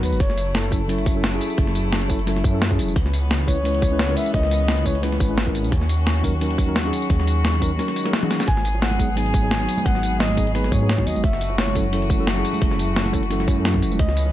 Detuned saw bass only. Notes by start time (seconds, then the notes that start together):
0.03 D#2
0.12 F#1
0.20 F#1
0.72 F#1
1.58 F#1
2.10 F#1
2.44 F#2
2.79 E1
2.96 C#2
3.48 C#2
4.34 C#2
4.86 C#2
5.20 G#1
5.55 G#1
5.64 B1
5.72 D#2
6.24 D#2
7.10 D#2
7.62 D#2
8.48 G#1
8.99 G#1
9.86 G#1
10.37 G#1
10.72 G#2
11.06 D#2
11.15 F#1
11.24 F#1
11.75 F#1
12.62 F#1
13.13 F#1
13.48 F#2
13.82 E1
13.99 C#2